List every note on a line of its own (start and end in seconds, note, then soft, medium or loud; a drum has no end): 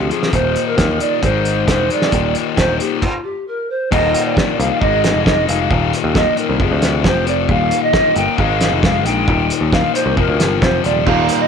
0.00 0.10 F3 medium
0.00 0.10 G4 medium
0.10 0.32 F2 medium
0.10 0.32 C3 medium
0.10 0.32 F3 medium
0.10 0.35 G#4 medium
0.10 closed hi-hat soft
0.23 snare medium
0.32 0.55 D#1 medium
0.32 0.75 D#2 medium
0.32 0.76 A#2 medium
0.32 0.76 D#3 medium
0.32 0.67 C5 medium
0.32 kick medium
0.32 closed hi-hat medium
0.56 closed hi-hat medium
0.67 0.98 A#4 medium
0.77 0.98 D#2 medium
0.77 0.99 D#2 medium
0.77 0.99 A#2 medium
0.77 0.99 D#3 medium
0.77 kick loud
0.77 snare medium
0.77 closed hi-hat medium
1.00 1.21 D#2 medium
1.00 1.21 A#2 medium
1.00 1.22 D#3 medium
1.00 1.25 D5 medium
1.00 closed hi-hat medium
1.22 1.65 G#1 medium
1.22 1.65 G#2 medium
1.22 1.66 D#3 medium
1.22 1.66 G#3 medium
1.22 1.68 C5 medium
1.22 kick medium
1.22 closed hi-hat medium
1.45 closed hi-hat medium
1.67 1.89 E1 medium
1.67 1.88 G#2 medium
1.67 1.89 D#3 medium
1.67 1.89 G#3 medium
1.67 1.94 C5 medium
1.67 kick medium
1.67 snare loud
1.67 closed hi-hat medium
1.89 2.11 G#2 medium
1.89 2.11 D#3 medium
1.89 2.11 G#3 medium
1.89 2.36 D5 medium
1.89 closed hi-hat medium
2.02 snare medium
2.12 2.34 D#1 medium
2.12 2.55 D#2 medium
2.12 2.56 A#2 medium
2.12 2.56 D#3 medium
2.12 kick medium
2.12 closed hi-hat medium
2.35 closed hi-hat medium
2.56 2.79 D#1 medium
2.56 2.78 D#2 medium
2.56 2.78 A#2 medium
2.56 2.79 D#3 medium
2.56 2.79 C5 medium
2.56 kick medium
2.56 snare medium
2.56 closed hi-hat medium
2.79 3.00 D#2 medium
2.79 3.01 A#2 medium
2.79 3.01 D#3 medium
2.79 3.04 G4 medium
2.79 closed hi-hat medium
3.02 3.23 F4 medium
3.02 kick medium
3.02 crash medium
3.24 3.45 G4 medium
3.47 3.71 A#4 medium
3.70 3.93 C5 medium
3.91 4.13 D#1 loud
3.91 4.34 D#2 medium
3.91 4.35 A#2 medium
3.91 4.35 D#3 medium
3.91 4.26 D#5 medium
3.91 kick loud
3.91 crash medium
4.14 closed hi-hat medium
4.25 4.60 D5 medium
4.35 4.57 D#2 medium
4.35 4.57 A#2 medium
4.35 4.58 D#3 medium
4.35 kick loud
4.35 snare loud
4.58 4.70 C2 medium
4.58 4.79 D#2 medium
4.58 4.79 A#2 medium
4.58 4.80 D#3 medium
4.58 4.83 F5 medium
4.58 closed hi-hat medium
4.81 5.13 G#1 medium
4.81 5.24 G#2 medium
4.81 5.25 D#3 medium
4.81 5.25 G#3 medium
4.81 5.26 D#5 medium
4.81 kick loud
5.04 snare medium
5.04 closed hi-hat medium
5.14 5.46 F1 medium
5.26 5.47 G#2 medium
5.26 5.48 D#3 medium
5.26 5.48 G#3 medium
5.26 5.49 D#5 medium
5.26 kick medium
5.26 snare loud
5.47 5.70 F1 medium
5.47 5.69 G#2 medium
5.47 5.69 D#3 medium
5.47 5.69 G#3 medium
5.47 5.92 F5 medium
5.47 closed hi-hat medium
5.70 5.92 D#1 loud
5.70 6.13 D#2 medium
5.70 6.14 A#2 medium
5.70 6.15 D#3 loud
5.70 kick medium
5.93 closed hi-hat medium
6.04 6.25 D#2 medium
6.15 6.35 D#2 medium
6.15 6.35 A#2 medium
6.15 6.36 D#3 medium
6.15 6.40 D#5 medium
6.15 kick loud
6.15 snare medium
6.37 6.58 D#2 medium
6.37 6.58 A#2 medium
6.37 6.58 D#3 medium
6.37 6.60 A#4 medium
6.37 closed hi-hat medium
6.49 6.59 C2 medium
6.59 6.70 F1 medium
6.59 7.03 F2 medium
6.59 7.03 C3 medium
6.59 7.04 F3 loud
6.59 7.02 G#4 medium
6.59 kick medium
6.72 7.03 D2 medium
6.82 snare medium
6.82 closed hi-hat medium
7.04 7.47 F1 medium
7.04 7.25 F2 medium
7.04 7.25 C3 medium
7.04 7.26 F3 medium
7.04 7.29 C5 medium
7.04 kick loud
7.04 snare loud
7.26 7.47 F2 medium
7.26 7.48 C3 medium
7.26 7.48 F3 medium
7.26 7.49 D5 medium
7.26 closed hi-hat medium
7.49 7.70 D#1 medium
7.49 7.92 D#2 medium
7.49 7.93 A#2 medium
7.49 7.93 D#3 loud
7.49 7.84 F5 medium
7.49 kick medium
7.71 closed hi-hat medium
7.83 8.18 D#5 loud
7.93 8.15 D#2 medium
7.93 8.15 A#2 medium
7.93 8.15 D#3 medium
7.93 kick loud
7.93 snare loud
8.16 8.27 G1 medium
8.16 8.37 D#2 medium
8.16 8.37 A#2 medium
8.16 8.37 D#3 medium
8.16 8.37 G5 loud
8.16 closed hi-hat medium
8.38 8.70 G#1 medium
8.38 8.81 G#2 medium
8.38 8.82 D#3 medium
8.38 8.82 G#3 medium
8.38 8.80 F5 medium
8.38 kick loud
8.61 snare medium
8.61 closed hi-hat medium
8.72 9.05 F1 medium
8.83 9.04 G#2 medium
8.83 9.05 D#3 medium
8.83 9.05 G#3 loud
8.83 9.07 F5 medium
8.83 kick loud
8.83 snare loud
9.05 9.26 A#1 medium
9.05 9.26 G#2 medium
9.05 9.27 D#3 medium
9.05 9.27 G#3 medium
9.05 9.50 G5 medium
9.05 closed hi-hat medium
9.28 9.49 D#1 loud
9.28 9.71 D#2 medium
9.28 9.72 A#2 medium
9.28 9.73 D#3 medium
9.28 kick loud
9.50 closed hi-hat medium
9.61 9.82 D#2 medium
9.73 9.94 D#2 medium
9.73 9.94 A#2 medium
9.73 9.95 D#3 medium
9.73 9.96 F5 medium
9.73 kick loud
9.73 snare loud
9.95 10.16 D#2 medium
9.95 10.16 A#2 medium
9.95 10.16 D#3 medium
9.95 10.19 C5 medium
9.95 closed hi-hat medium
10.06 10.16 C2 medium
10.17 10.28 F1 medium
10.17 10.61 F2 medium
10.17 10.61 C3 medium
10.17 10.62 F3 loud
10.17 10.64 A#4 medium
10.17 kick loud
10.29 10.39 D2 medium
10.39 10.59 G1 medium
10.39 snare medium
10.39 closed hi-hat medium
10.62 10.82 F1 medium
10.62 10.83 F2 medium
10.62 10.83 C3 medium
10.62 10.84 F3 medium
10.62 10.86 C5 medium
10.62 kick loud
10.62 snare loud
10.84 11.04 D#1 medium
10.84 11.05 F2 medium
10.84 11.05 C3 medium
10.84 11.05 F3 medium
10.84 11.08 D5 medium
10.84 closed hi-hat medium
11.07 11.28 D#1 loud
11.07 11.48 D#2 medium
11.07 11.48 A#2 medium
11.07 11.48 D#3 medium
11.07 11.40 F5 medium
11.07 kick loud
11.29 closed hi-hat medium
11.41 11.48 D#5 loud